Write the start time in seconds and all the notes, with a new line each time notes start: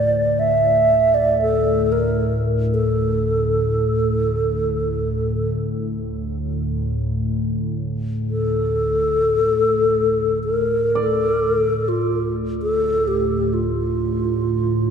Already playing: D2 A2 D5
0.39 E5
1.14 D5
1.42 A4
1.92 A#4
2.74 A4
8.30 A4
10.44 A#4
10.72 D2 A2
10.95 D5
11.03 A4
11.88 F4
12.62 A4
13.08 G4
13.54 F4